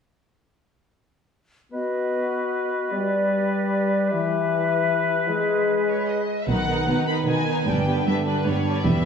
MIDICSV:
0, 0, Header, 1, 11, 480
1, 0, Start_track
1, 0, Tempo, 396825
1, 2089, Time_signature, 3, 2, 24, 8
1, 10948, End_track
2, 0, Start_track
2, 0, Title_t, "Violin section"
2, 0, Program_c, 0, 48
2, 7120, Note_on_c, 0, 73, 49
2, 7337, Note_off_c, 0, 73, 0
2, 7360, Note_on_c, 0, 75, 41
2, 7719, Note_off_c, 0, 75, 0
2, 7739, Note_on_c, 0, 76, 36
2, 7847, Note_off_c, 0, 76, 0
2, 7850, Note_on_c, 0, 78, 59
2, 8550, Note_off_c, 0, 78, 0
2, 8556, Note_on_c, 0, 83, 58
2, 8653, Note_off_c, 0, 83, 0
2, 8811, Note_on_c, 0, 80, 59
2, 9273, Note_off_c, 0, 80, 0
2, 9289, Note_on_c, 0, 79, 50
2, 9761, Note_off_c, 0, 79, 0
2, 9767, Note_on_c, 0, 76, 61
2, 9861, Note_off_c, 0, 76, 0
2, 10006, Note_on_c, 0, 71, 47
2, 10235, Note_off_c, 0, 71, 0
2, 10248, Note_on_c, 0, 73, 52
2, 10599, Note_off_c, 0, 73, 0
2, 10618, Note_on_c, 0, 74, 49
2, 10720, Note_on_c, 0, 76, 62
2, 10725, Note_off_c, 0, 74, 0
2, 10948, Note_off_c, 0, 76, 0
2, 10948, End_track
3, 0, Start_track
3, 0, Title_t, "Flute"
3, 0, Program_c, 1, 73
3, 2095, Note_on_c, 1, 75, 32
3, 3529, Note_on_c, 1, 74, 38
3, 3547, Note_off_c, 1, 75, 0
3, 4977, Note_on_c, 1, 76, 43
3, 4995, Note_off_c, 1, 74, 0
3, 6392, Note_off_c, 1, 76, 0
3, 6399, Note_on_c, 1, 75, 42
3, 7572, Note_off_c, 1, 75, 0
3, 10948, End_track
4, 0, Start_track
4, 0, Title_t, "Oboe"
4, 0, Program_c, 2, 68
4, 2094, Note_on_c, 2, 71, 35
4, 4914, Note_off_c, 2, 71, 0
4, 4950, Note_on_c, 2, 71, 53
4, 7537, Note_off_c, 2, 71, 0
4, 10948, End_track
5, 0, Start_track
5, 0, Title_t, "Violin section"
5, 0, Program_c, 3, 48
5, 7834, Note_on_c, 3, 63, 36
5, 7834, Note_on_c, 3, 71, 39
5, 8070, Note_off_c, 3, 63, 0
5, 8070, Note_off_c, 3, 71, 0
5, 8087, Note_on_c, 3, 71, 36
5, 8089, Note_on_c, 3, 63, 34
5, 8306, Note_off_c, 3, 71, 0
5, 8313, Note_off_c, 3, 63, 0
5, 8321, Note_on_c, 3, 71, 34
5, 8327, Note_on_c, 3, 63, 38
5, 8554, Note_off_c, 3, 71, 0
5, 8557, Note_off_c, 3, 63, 0
5, 8576, Note_on_c, 3, 63, 38
5, 8576, Note_on_c, 3, 71, 38
5, 8798, Note_off_c, 3, 63, 0
5, 8802, Note_off_c, 3, 71, 0
5, 8813, Note_on_c, 3, 63, 37
5, 8818, Note_on_c, 3, 71, 37
5, 9039, Note_off_c, 3, 63, 0
5, 9042, Note_off_c, 3, 71, 0
5, 9058, Note_on_c, 3, 63, 35
5, 9062, Note_on_c, 3, 71, 39
5, 9280, Note_off_c, 3, 71, 0
5, 9282, Note_off_c, 3, 63, 0
5, 9293, Note_on_c, 3, 62, 40
5, 9295, Note_on_c, 3, 71, 39
5, 9508, Note_off_c, 3, 62, 0
5, 9508, Note_off_c, 3, 71, 0
5, 9522, Note_on_c, 3, 71, 39
5, 9523, Note_on_c, 3, 62, 37
5, 9735, Note_off_c, 3, 62, 0
5, 9741, Note_off_c, 3, 71, 0
5, 9750, Note_on_c, 3, 62, 36
5, 9755, Note_on_c, 3, 71, 38
5, 9972, Note_off_c, 3, 62, 0
5, 9974, Note_off_c, 3, 71, 0
5, 9987, Note_on_c, 3, 62, 42
5, 9988, Note_on_c, 3, 71, 40
5, 10222, Note_off_c, 3, 62, 0
5, 10223, Note_off_c, 3, 71, 0
5, 10237, Note_on_c, 3, 62, 39
5, 10237, Note_on_c, 3, 71, 39
5, 10459, Note_off_c, 3, 71, 0
5, 10463, Note_off_c, 3, 62, 0
5, 10473, Note_on_c, 3, 71, 39
5, 10477, Note_on_c, 3, 62, 38
5, 10700, Note_off_c, 3, 71, 0
5, 10707, Note_on_c, 3, 64, 42
5, 10709, Note_off_c, 3, 62, 0
5, 10715, Note_on_c, 3, 71, 44
5, 10941, Note_off_c, 3, 71, 0
5, 10944, Note_off_c, 3, 64, 0
5, 10948, End_track
6, 0, Start_track
6, 0, Title_t, "Clarinet"
6, 0, Program_c, 4, 71
6, 2078, Note_on_c, 4, 66, 33
6, 3525, Note_on_c, 4, 67, 41
6, 3543, Note_off_c, 4, 66, 0
6, 6384, Note_off_c, 4, 67, 0
6, 6389, Note_on_c, 4, 68, 40
6, 7568, Note_off_c, 4, 68, 0
6, 10948, End_track
7, 0, Start_track
7, 0, Title_t, "Viola section"
7, 0, Program_c, 5, 48
7, 7837, Note_on_c, 5, 59, 41
7, 7846, Note_on_c, 5, 51, 42
7, 8056, Note_off_c, 5, 59, 0
7, 8062, Note_off_c, 5, 51, 0
7, 8070, Note_on_c, 5, 59, 34
7, 8077, Note_on_c, 5, 51, 34
7, 8288, Note_off_c, 5, 51, 0
7, 8289, Note_off_c, 5, 59, 0
7, 8303, Note_on_c, 5, 51, 38
7, 8304, Note_on_c, 5, 59, 38
7, 8533, Note_off_c, 5, 59, 0
7, 8536, Note_off_c, 5, 51, 0
7, 8548, Note_on_c, 5, 59, 37
7, 8550, Note_on_c, 5, 51, 39
7, 8759, Note_off_c, 5, 59, 0
7, 8763, Note_off_c, 5, 51, 0
7, 8773, Note_on_c, 5, 59, 35
7, 8777, Note_on_c, 5, 51, 35
7, 9007, Note_off_c, 5, 51, 0
7, 9010, Note_off_c, 5, 59, 0
7, 9022, Note_on_c, 5, 51, 35
7, 9025, Note_on_c, 5, 59, 35
7, 9248, Note_off_c, 5, 59, 0
7, 9256, Note_on_c, 5, 55, 43
7, 9262, Note_on_c, 5, 59, 42
7, 9263, Note_off_c, 5, 51, 0
7, 9495, Note_off_c, 5, 55, 0
7, 9500, Note_off_c, 5, 59, 0
7, 9510, Note_on_c, 5, 55, 34
7, 9514, Note_on_c, 5, 59, 40
7, 9742, Note_off_c, 5, 59, 0
7, 9745, Note_off_c, 5, 55, 0
7, 9757, Note_on_c, 5, 59, 39
7, 9759, Note_on_c, 5, 55, 37
7, 9973, Note_off_c, 5, 55, 0
7, 9978, Note_off_c, 5, 59, 0
7, 9988, Note_on_c, 5, 55, 37
7, 9993, Note_on_c, 5, 59, 37
7, 10215, Note_off_c, 5, 55, 0
7, 10223, Note_off_c, 5, 59, 0
7, 10230, Note_on_c, 5, 55, 37
7, 10237, Note_on_c, 5, 59, 36
7, 10448, Note_off_c, 5, 59, 0
7, 10449, Note_off_c, 5, 55, 0
7, 10463, Note_on_c, 5, 59, 36
7, 10464, Note_on_c, 5, 55, 36
7, 10695, Note_off_c, 5, 55, 0
7, 10702, Note_off_c, 5, 59, 0
7, 10710, Note_on_c, 5, 55, 47
7, 10716, Note_on_c, 5, 59, 47
7, 10936, Note_off_c, 5, 59, 0
7, 10945, Note_off_c, 5, 55, 0
7, 10948, End_track
8, 0, Start_track
8, 0, Title_t, "French horn section"
8, 0, Program_c, 6, 60
8, 2083, Note_on_c, 6, 59, 34
8, 3479, Note_off_c, 6, 59, 0
8, 3534, Note_on_c, 6, 55, 42
8, 4962, Note_off_c, 6, 55, 0
8, 4995, Note_on_c, 6, 52, 50
8, 6376, Note_off_c, 6, 52, 0
8, 6383, Note_on_c, 6, 56, 45
8, 7589, Note_off_c, 6, 56, 0
8, 10948, End_track
9, 0, Start_track
9, 0, Title_t, "Trombone section"
9, 0, Program_c, 7, 61
9, 7816, Note_on_c, 7, 59, 44
9, 7820, Note_on_c, 7, 51, 42
9, 9220, Note_off_c, 7, 51, 0
9, 9260, Note_on_c, 7, 50, 42
9, 10655, Note_off_c, 7, 59, 0
9, 10656, Note_off_c, 7, 50, 0
9, 10674, Note_on_c, 7, 55, 47
9, 10674, Note_on_c, 7, 59, 52
9, 10948, Note_off_c, 7, 55, 0
9, 10948, Note_off_c, 7, 59, 0
9, 10948, End_track
10, 0, Start_track
10, 0, Title_t, "Cello section"
10, 0, Program_c, 8, 48
10, 7839, Note_on_c, 8, 47, 51
10, 8240, Note_off_c, 8, 47, 0
10, 8315, Note_on_c, 8, 47, 47
10, 8718, Note_off_c, 8, 47, 0
10, 8786, Note_on_c, 8, 47, 49
10, 9191, Note_off_c, 8, 47, 0
10, 9282, Note_on_c, 8, 43, 51
10, 9680, Note_off_c, 8, 43, 0
10, 9760, Note_on_c, 8, 43, 45
10, 10159, Note_off_c, 8, 43, 0
10, 10245, Note_on_c, 8, 43, 54
10, 10640, Note_off_c, 8, 43, 0
10, 10722, Note_on_c, 8, 40, 56
10, 10948, Note_off_c, 8, 40, 0
10, 10948, End_track
11, 0, Start_track
11, 0, Title_t, "Double bass section"
11, 0, Program_c, 10, 48
11, 7832, Note_on_c, 10, 35, 48
11, 8236, Note_off_c, 10, 35, 0
11, 9284, Note_on_c, 10, 31, 49
11, 9681, Note_off_c, 10, 31, 0
11, 10711, Note_on_c, 10, 28, 54
11, 10948, Note_off_c, 10, 28, 0
11, 10948, End_track
0, 0, End_of_file